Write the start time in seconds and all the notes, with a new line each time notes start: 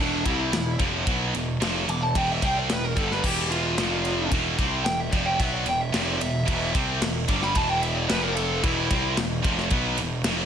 0.00 E1 E2 B2 E3 D4
0.25 C2 C3 G3 C4 E4, kick, ride
0.52 E1 E2 B2, snare, ride
0.79 F1 F2 C3 F3, kick, ride
1.06 B1 B2 F#3 B3, kick, ride
1.34 E1 E2 B2, ride
1.60 F1 F2 C3 F3, snare, ride
1.87 E1 E2 B2 D6, ride
2.02 A5
2.15 E1 E2 B2 E3 G5, kick, ride
2.32 E5
2.42 C2 C3 G3 C4 G5, kick, ride
2.58 D5
2.69 E1 E2 B2 B4, snare, ride
2.85 A#4
2.96 G1 G2 D3 G3 A4, kick, ride
3.12 B4, snare
3.24 E1 E2 B2 E3 G4, kick, crash
3.51 F4, ride
3.78 F1 F2 C3 F3, snare, ride
4.05 ride
4.32 E1 E2 B2 E3, kick, ride
4.58 C2 C3 G3 C4, kick, ride
4.85 E1 E2 B2 G5, snare, ride
5.00 E5
5.12 F1 F2 C3 F3 D5, kick, ride
5.26 G5
5.39 B1 B2 F#3 B3 E5, kick, ride
5.53 D5
5.66 E1 E2 B2 G5, ride
5.81 E5
5.93 F1 F2 C3 F3 D5, snare, ride
6.20 E1 E2 B2 E5, ride
6.46 E1 E2 B2 E3, kick, ride
6.74 C2 C3 G3 C4, kick, ride
7.01 E1 E2 B2, snare, ride
7.28 G1 G2 D3 G3 D6, kick, ride
7.42 B5, snare
7.54 E1 E2 B2 E3 A5, kick, ride
7.69 G5
7.82 E5, ride
7.96 D5
8.09 F1 F2 C3 F3 B4, snare, ride
8.24 A#4
8.36 A4, ride
8.62 E1 E2 B2 E3 E4, kick, ride
8.90 C2 C3 G3 C4, kick, ride
9.17 E1 E2 B2, snare, ride
9.43 F1 F2 C3 F3, kick, ride
9.58 snare
9.70 B1 B2 F#3 B3, kick, ride
9.98 E1 E2 B2, ride
10.24 F1 F2 C3 F3, snare, ride